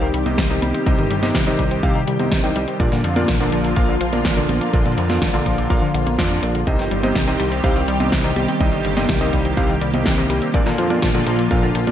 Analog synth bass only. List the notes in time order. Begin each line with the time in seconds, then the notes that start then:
Already playing: C2
0.14 C2
0.26 C2
0.38 C2
0.62 C2
0.86 C2
0.99 G1
1.11 G1
1.35 C2
1.59 C2
1.83 C2
2.07 C2
2.20 C2
2.32 C2
2.56 C2
2.80 A#1
2.92 A#2
3.04 F2
3.28 A#1
3.53 A#1
3.77 A#1
4.01 A#1
4.13 A#1
4.25 A#1
4.49 A#1
4.73 A#1
4.86 A#2
4.98 F2
5.22 A#1
5.46 A#1
5.70 A#1
5.94 A#1
6.06 A#1
6.19 F2
6.43 A#1
6.67 C2
6.79 G1
6.91 G1
7.15 C2
7.40 C2
7.64 C2
7.88 C2
8.00 C2
8.12 C2
8.36 C2
8.61 C2
8.73 G1
8.85 G1
9.09 C2
9.33 C2
9.57 C2
9.81 C2
9.93 C2
10.06 C2
10.30 C2
10.54 A#1
10.66 A#2
10.78 F2
11.02 A#1
11.27 A#1
11.51 A#1
11.75 A#1
11.87 A#1